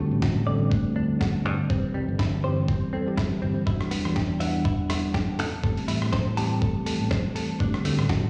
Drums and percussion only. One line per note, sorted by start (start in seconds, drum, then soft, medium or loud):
0.22 kick loud
0.22 snare loud
0.72 kick loud
1.21 kick loud
1.21 snare loud
1.70 kick loud
2.19 kick medium
2.19 snare loud
2.68 kick loud
3.18 kick loud
3.18 snare loud
3.67 kick loud
3.81 cross-stick medium
3.91 open hi-hat loud
4.05 cross-stick medium
4.16 kick medium
4.16 snare loud
4.41 open hi-hat loud
4.65 kick loud
4.90 cross-stick medium
4.90 open hi-hat loud
5.14 kick medium
5.14 snare loud
5.39 open hi-hat medium
5.64 kick loud
5.77 open hi-hat medium
5.88 open hi-hat medium
6.02 cross-stick medium
6.13 kick medium
6.13 snare loud
6.37 open hi-hat medium
6.62 kick loud
6.86 open hi-hat loud
7.11 kick medium
7.11 snare loud
7.36 open hi-hat medium
7.60 kick loud
7.74 cross-stick medium
7.85 open hi-hat medium
7.99 cross-stick medium
8.09 kick loud
8.09 snare loud